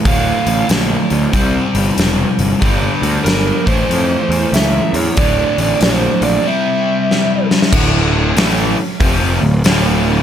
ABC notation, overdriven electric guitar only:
X:1
M:4/4
L:1/8
Q:"Swing" 1/4=94
K:Dm
V:1 name="Overdriven electric guitar" clef=bass
[D,,A,,D,]4 [C,G,C]4 | [G,,D,G,]3 [A,,E,A,]4- [A,,E,A,] | [D,,A,,D,]4 [C,G,C]4 | [D,,A,,D,]2 [A,,E,A,] z [F,,C,F,] [D,,A,,] [D,,A,,D,]2 |]